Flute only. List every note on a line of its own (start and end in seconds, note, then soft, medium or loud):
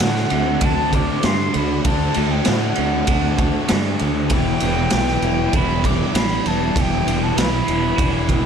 0.00 0.66 F#5 medium
0.64 0.95 A5 medium
0.94 1.25 D6 medium
1.24 1.57 C6 loud
1.56 1.85 B5 medium
1.85 2.32 A5 medium
2.31 2.47 G5 medium
2.46 3.69 F#5 medium
4.32 5.57 G5 medium
5.55 5.87 B5 loud
5.85 6.14 D6 medium
6.15 6.48 B5 loud
6.47 6.81 A5 medium
6.80 7.25 G5 medium
7.23 7.39 A5 medium
7.37 8.46 B5 medium